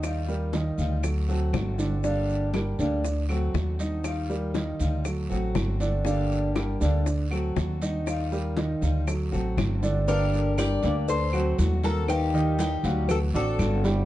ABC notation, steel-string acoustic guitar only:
X:1
M:4/4
L:1/8
Q:1/4=119
K:Dphr
V:1 name="Steel-string acoustic guitar"
[E,G,EF]3 [G,EF] z [A,C^F] [D,A,CF]2 | [D,G,B,DG]3 [G,B,DG] z [A,C^F] [D,A,CF]2 | [E,G,EF]3 [G,EF] z [A,C^F] [D,A,CF]2 | [D,G,B,DG]3 [G,B,DG] z [A,C^F] [D,A,CF]2 |
[E,G,EF]3 [G,EF] z [A,C^F] [D,A,CF]2 | [D,G,B,DG]3 [G,B,DG] z [A,C^F] [D,A,CF]2 | [E,G,EF]3 [G,EF] z [A,C^F] [D,A,CF]2 |]